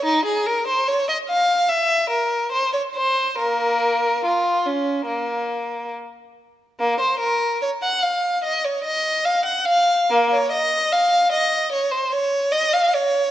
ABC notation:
X:1
M:4/4
L:1/16
Q:1/4=73
K:Bbm
V:1 name="Violin"
E A B c d e f2 =e2 B2 c d c2 | [B,B]4 F2 D2 B,4 z4 | B, c B2 d g f2 e d e2 f g f2 | B, d e2 f2 e2 d c d2 e f d2 |]